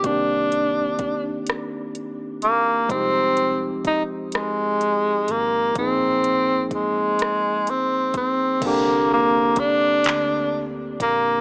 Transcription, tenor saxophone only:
\new Staff \with { instrumentName = "Tenor saxophone" } { \time 6/8 \key c \minor \tempo 4. = 42 d'4. r4 bes8 | c'4 ees'8 aes4 bes8 | c'4 aes4 c'8 c'8 | bes8 bes8 d'4 r8 bes8 | }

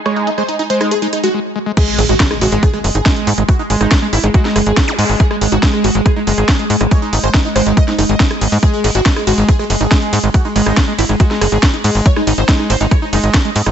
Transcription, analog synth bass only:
\new Staff \with { instrumentName = "Analog synth bass" } { \clef bass \time 4/4 \tempo 4 = 140 r1 | r8 gis,,16 gis,,16 r8 gis,,16 gis,,16 r8 fis,,16 gis,,16 r8 gis,16 gis,,16 | r8 gis,,16 gis,,16 r8 gis,,16 gis,,16 r8 fis,,16 gis,,16 r8 gis,16 gis,,16 | r8 gis,,16 gis,,16 r8 gis,,16 gis,,16 r8 fis,,16 gis,,16 r8 gis,16 gis,,16 |
r8 gis,,16 gis,,16 r8 gis,,16 gis,,16 r8 fis,,16 gis,,16 r8 gis,,16 gis,16 | r8 gis,,16 gis,,16 r8 gis,,16 gis,,16 r8 fis,,16 gis,,16 r8 gis,16 gis,,16 | r8 gis,,16 gis,,16 r8 gis,,16 gis,,16 r8 fis,,16 gis,,16 r8 gis,16 gis,,16 | r8 gis,,16 gis,,16 r8 gis,,16 gis,,16 r8 fis,,16 gis,,16 r8 gis,16 gis,,16 | }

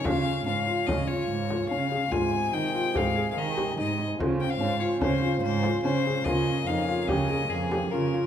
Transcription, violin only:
\new Staff \with { instrumentName = "Violin" } { \time 5/4 \key des \lydian \tempo 4 = 145 f''4 f''4 ees''8 des''4. f''4 | aes''4 g''4 \tuplet 3/2 { f''4~ f''16 f''16 } ees''4 ees''8. r16 | r8 g''16 f''8. des''8 c''4 c''4 c''4 | ees''4 \tuplet 3/2 { f''4~ f''16 f''16 } ees''4 aes'4 bes'4 | }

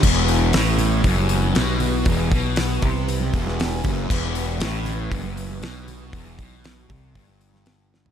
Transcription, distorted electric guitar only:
\new Staff \with { instrumentName = "Distorted electric guitar" } { \clef bass \time 4/4 \key e \minor \tempo 4 = 118 e,4 a,4 fis,4 b,4 | e,8 b,4 c4 e,4 fis,8 | e,4 a,4 fis,4 b,4 | e,8 b,4 c8 g,2 | }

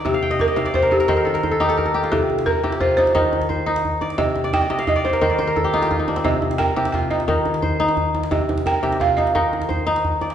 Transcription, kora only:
<<
  \new Staff \with { instrumentName = "Kora" } { \time 12/8 \key c \dorian \tempo 4. = 116 << { r16 f''16 g''16 ees''16 d''16 ees''16 f''16 d''16 c''16 bes'16 a'16 bes'16 c''16 bes'16 a'16 bes'16 c''16 a'16 g'16 a'16 bes'16 a'16 g'16 f'16~ | f'16 r1 r4. r16 | r8. d''16 ees''16 d''16 ees''16 f''16 ees''16 d''16 c''16 bes'16 c''16 d''16 c''16 bes'16 a'16 g'16 f'16 g'16 f'16 ees'16 d'16 c'16~ | c'16 r1 r4. r16 |
r1. | } \\ { d''8 r1 r4. | r4 bes'8 g'8 f'8 ees'8 ees'4 c''4. d''8~ | d''8 r1 r4. | r4 bes'8 g'8 f'8 ees'8 ees'4 c''4. r8 |
r4 bes'8 g'8 f'8 ees'8 ees'4 c''4. d''8 | } >> }
  \new Staff \with { instrumentName = "Kora" } { \clef bass \time 12/8 \key c \dorian c4 r8 c4 r8 ees4 r8 ees'4 r8 | c4 r8 c4 r8 ees4 r8 ees'4 r8 | c4 r8 c4 r8 ees4 r8 ees'4 r8 | c4 r8 c4 r8 ees4 r8 ees'4 r8 |
c4 r8 c4 r8 ees4 r8 ees'4 r8 | }
>>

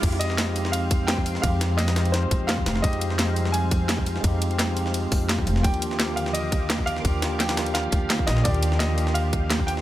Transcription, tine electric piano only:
\new Staff \with { instrumentName = "Tine electric piano" } { \time 4/4 \key f \dorian \tempo 4 = 171 <aes c' ees' g'>4. <aes c' ees' g'>2~ <aes c' ees' g'>8 | <aes c' ees' g'>4. <aes c' ees' g'>2~ <aes c' ees' g'>8 | <aes c' ees' g'>4. <g aes c' ees'>2~ <g aes c' ees'>8 | <aes c' ees' g'>4. <aes c' ees' g'>2~ <aes c' ees' g'>8 |
<bes d' f' g'>4. <d bes f' g'>2~ <d bes f' g'>8 | <bes d' f' g'>4. <bes d' f' g'>2~ <bes d' f' g'>8 | <bes d' f' g'>4. <bes d' f' g'>2~ <bes d' f' g'>8 | }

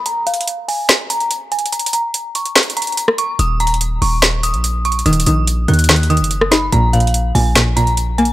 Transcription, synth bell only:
\new Staff \with { instrumentName = "Synth bell" } { \time 4/4 \key ees \minor \tempo 4 = 144 bes''8 f''4 aes''4 bes''4 aes''8 | bes''8 bes''4 des'''8 r8 bes''4 des'''8 | ees'''8 bes''4 des'''4 ees'''4 des'''8 | ees'''8 ees'''4 ges'''4 ees'''4 ces'''8 |
bes''8 f''4 aes''4 bes''4 aes''8 | }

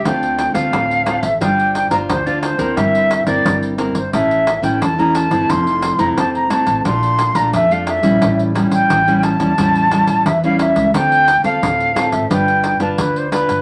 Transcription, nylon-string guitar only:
\new Staff \with { instrumentName = "Nylon-string guitar" } { \time 4/4 \key d \minor \tempo 4 = 88 << { <a c' f'>8. <a c' f'>8. <a c' f'>16 r16 <d' f' c''>8. <d' f' c''>8 <d' f' c''>8 <c' e' bes'>16~ | <c' e' bes'>8. <c' e' bes'>8. <c' e' bes'>16 r16 <a cis' e'>8 r16 <a cis' e'>8 <a cis' e'>8 <a c' e'>16~ | <a c' e'>8. <a c' e'>8. <a c' e'>8 <a d' f'>8. <a d' f'>8 <a d' f'>8 <g cis' e'>16~ | <g cis' e'>8 <g cis' e'>8. <g cis' e'>8 <g cis' e'>16 <g cis' e'>8 <g cis' e'>8 r16 <g cis' e'>8. |
<c' f' a'>8 r16 <c' f' a'>8. <c' f' a'>8 <d' f' b'>8. <d' f' b'>8. <d' f' b'>8 | } \\ { d4 a,4 g4 d4 | g4 g4 a,4 e4 | f4 c4 bes,4 f4 | a,4 e4 a,4 e4 |
d4 a,4 g4 d4 | } >> }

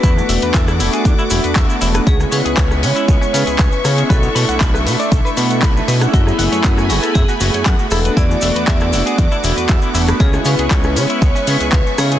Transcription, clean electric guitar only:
\new Staff \with { instrumentName = "Clean electric guitar" } { \time 4/4 \key e \mixolydian \tempo 4 = 118 e'16 e16 e''16 b'16 e''16 e'16 e'16 gis'16 d'16 e'16 e'16 b'16 e''16 e'16 e'16 b'16 | cis'16 cis16 cis''16 gis'16 cis''16 cis'16 cis'16 e'16 b16 cis'16 cis'16 gis'16 cis''16 cis'16 cis'16 gis'16 | b'16 b16 b''16 fis''16 b''16 b'16 b'16 d''16 a'16 b'16 b'16 fis''16 b''16 b'16 b'16 fis''16 | fis'16 fis16 fis''16 cis''16 fis''16 fis'16 fis'16 a'16 e'16 fis'16 fis'16 cis''16 fis''16 fis'16 e'16 b'16 |
e'16 e16 e''16 b'16 e''16 e'16 e'16 gis'16 d'16 e'16 e'16 b'16 e''16 e'16 e'16 b'16 | cis'16 cis16 cis''16 gis'16 cis''16 cis'16 cis'16 e'16 b16 cis'16 cis'16 gis'16 cis''16 cis'16 cis'16 gis'16 | }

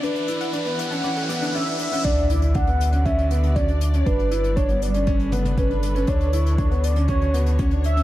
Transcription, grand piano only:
\new Staff \with { instrumentName = "Grand piano" } { \time 4/4 \key d \major \tempo 4 = 119 d'8 e'8 d'16 b8 cis'16 cis'8 b8 cis'16 d'8 cis'16 | d'8 e'8 d'16 b8 cis'16 cis'8 b8 cis'16 d'8 cis'16 | d'8 e'8 d'16 b8 cis'16 cis'8 b8 cis'16 d'8 cis'16 | d'8 e'8 d'16 b8 cis'16 cis'8 b8 cis'16 d'8 cis'16 | }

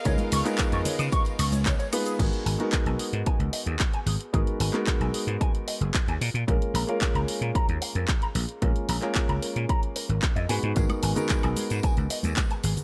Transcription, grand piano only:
\new Staff \with { instrumentName = "Grand piano" } { \time 4/4 \key gis \dorian \tempo 4 = 112 <gis b dis' eis' ais'>8. <gis b dis' eis' ais'>2~ <gis b dis' eis' ais'>8. <gis b dis' eis' b'>8 | <gis dis' ais'>8. <gis b dis' fis' ais'>2.~ <gis b dis' fis' ais'>16 | <gis b dis' fis' ais'>8. <gis b dis' fis' ais'>2~ <gis b dis' fis' ais'>8. r8 | <gis ais cis' eis' ais'>8. <gis ais cis' eis' ais'>2.~ <gis ais cis' eis' ais'>16 |
<gis ais cis' eis' ais'>8. <gis ais cis' eis' ais'>2~ <gis ais cis' eis' ais'>8. <gis b dis' fis' b'>8 | <gis b dis' fis' ais'>8. <gis b dis' fis' ais'>2.~ <gis b dis' fis' ais'>16 | }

